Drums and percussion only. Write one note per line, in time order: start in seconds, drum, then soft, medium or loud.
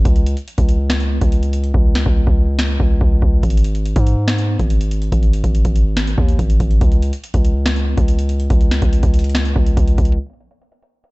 0.05 kick loud
0.05 closed hi-hat medium
0.16 closed hi-hat medium
0.26 closed hi-hat medium
0.37 closed hi-hat medium
0.48 closed hi-hat medium
0.58 kick loud
0.58 closed hi-hat medium
0.69 closed hi-hat medium
0.90 snare loud
0.90 closed hi-hat medium
1.00 closed hi-hat medium
1.21 kick medium
1.21 closed hi-hat medium
1.32 closed hi-hat medium
1.43 closed hi-hat medium
1.53 closed hi-hat medium
1.64 closed hi-hat soft
1.74 kick loud
1.95 snare medium
2.06 kick loud
2.27 kick loud
2.59 snare loud
2.80 kick medium
3.01 kick loud
3.22 kick loud
3.43 kick loud
3.43 closed hi-hat medium
3.50 closed hi-hat medium
3.57 closed hi-hat medium
3.64 closed hi-hat medium
3.75 closed hi-hat medium
3.86 closed hi-hat medium
3.96 kick loud
3.96 closed hi-hat medium
4.07 closed hi-hat medium
4.28 snare loud
4.28 closed hi-hat medium
4.38 closed hi-hat medium
4.59 kick medium
4.59 closed hi-hat medium
4.70 closed hi-hat medium
4.81 closed hi-hat medium
4.91 closed hi-hat medium
5.02 closed hi-hat soft
5.12 kick loud
5.12 closed hi-hat medium
5.23 closed hi-hat medium
5.33 closed hi-hat medium
5.44 kick medium
5.44 closed hi-hat medium
5.55 closed hi-hat medium
5.65 kick loud
5.65 closed hi-hat medium
5.76 closed hi-hat medium
5.97 snare loud
5.97 closed hi-hat medium
6.07 closed hi-hat medium
6.18 kick medium
6.29 closed hi-hat medium
6.39 kick loud
6.39 closed hi-hat medium
6.50 closed hi-hat medium
6.60 kick loud
6.60 closed hi-hat medium
6.71 closed hi-hat soft
6.81 kick loud
6.81 closed hi-hat medium
6.92 closed hi-hat medium
7.02 closed hi-hat medium
7.13 closed hi-hat medium
7.24 closed hi-hat medium
7.34 kick loud
7.34 closed hi-hat medium
7.45 closed hi-hat medium
7.66 snare loud
7.66 closed hi-hat medium
7.76 closed hi-hat medium
7.97 kick loud
7.97 closed hi-hat medium
8.08 closed hi-hat medium
8.19 closed hi-hat medium
8.29 closed hi-hat medium
8.40 closed hi-hat soft
8.50 kick loud
8.50 closed hi-hat medium
8.61 closed hi-hat medium
8.71 snare loud
8.71 closed hi-hat medium
8.82 kick loud
8.82 closed hi-hat medium
8.93 closed hi-hat medium
9.03 kick loud
9.03 closed hi-hat medium
9.14 closed hi-hat medium
9.19 closed hi-hat medium
9.24 closed hi-hat medium
9.29 closed hi-hat soft
9.35 snare loud
9.35 closed hi-hat medium
9.45 closed hi-hat medium
9.56 kick medium
9.66 closed hi-hat medium
9.77 kick loud
9.77 closed hi-hat medium
9.88 closed hi-hat medium
9.98 kick loud
9.98 closed hi-hat soft
10.05 closed hi-hat medium
10.12 closed hi-hat medium
10.19 closed hi-hat medium
10.26 closed hi-hat medium
10.30 closed hi-hat soft
10.33 closed hi-hat medium
10.40 closed hi-hat medium
10.51 closed hi-hat medium
10.62 closed hi-hat medium
10.72 closed hi-hat medium
10.82 closed hi-hat medium
11.04 closed hi-hat medium